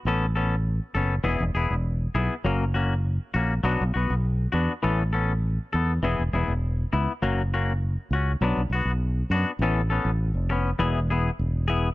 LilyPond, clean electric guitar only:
\new Staff \with { instrumentName = "Clean electric guitar" } { \time 4/4 \key a \major \tempo 4 = 100 <b cis' a'>8 <b cis' a'>8 r8 <b cis' a'>8 <e b e' gis'>8 <b e' gis'>8 r8 <b e' gis'>8 | <fis ais cis'>8 <ais cis' fis'>8 r8 <ais cis' fis'>8 <fis b d' fis'>8 <b fis'>8 r8 <b d' fis'>8 | <e b cis' a'>8 <b cis' a'>8 r8 <b a'>8 <e b e' gis'>8 <b e' gis'>8 r8 <b e'>8 | <fis ais cis' fis'>8 <ais cis' fis'>8 r8 <cis' fis'>8 <fis b d'>8 <b fis'>8 r8 <b d' fis'>8 |
<e b cis' a'>8 <b cis' a'>8 r8 <b cis'>8 <e b e' gis'>8 <b e' gis'>8 r8 <b e' gis'>8 | }